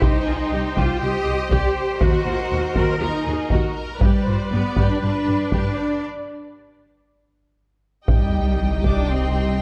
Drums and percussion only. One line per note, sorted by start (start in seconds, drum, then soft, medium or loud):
0.02 taiko medium
0.77 taiko medium
1.51 taiko medium
2.01 taiko medium
2.76 taiko medium
3.50 taiko medium
4.01 taiko medium
4.76 taiko medium
5.52 taiko medium
8.08 taiko medium
8.84 taiko medium